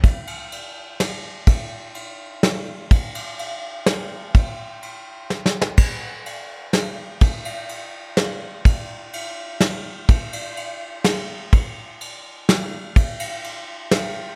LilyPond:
\new DrumStaff \with { instrumentName = "Drums" } \drummode { \time 3/4 \tempo 4 = 125 <bd cymr>8 cymr8 cymr4 <cymr sn>4 | <bd cymr>4 cymr4 <cymr sn>4 | <bd cymr>8 cymr8 cymr4 <cymr sn>4 | <bd cymr>4 cymr4 \tuplet 3/2 { sn8 sn8 sn8 } |
<cymc bd>4 cymr4 <cymr sn>4 | <bd cymr>8 cymr8 cymr4 <cymr sn>4 | <bd cymr>4 cymr4 <cymr sn>4 | <bd cymr>8 cymr8 cymr4 <cymr sn>4 |
<bd cymr>4 cymr4 <cymr sn>4 | <bd cymr>8 cymr8 cymr4 <cymr sn>4 | }